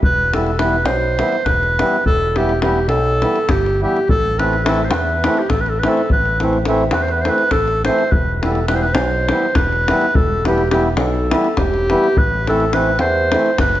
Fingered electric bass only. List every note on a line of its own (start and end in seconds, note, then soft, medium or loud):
0.04 0.85 E1 medium
0.85 1.21 B1 medium
1.45 1.82 E1 medium
2.05 2.88 E1 medium
2.88 3.24 B1 medium
3.49 3.85 G1 medium
4.10 4.91 A1 medium
4.91 5.27 E2 medium
5.50 5.86 A1 medium
6.11 6.92 A1 medium
6.92 7.28 E2 medium
7.53 7.89 A1 medium
8.13 8.95 E1 medium
8.95 9.31 B1 medium
9.55 9.91 E1 medium
10.16 10.97 E1 medium
10.97 11.33 B1 medium
11.58 11.94 E1 medium
12.17 12.99 A1 medium
12.99 13.35 E2 medium
13.59 13.80 F#1 medium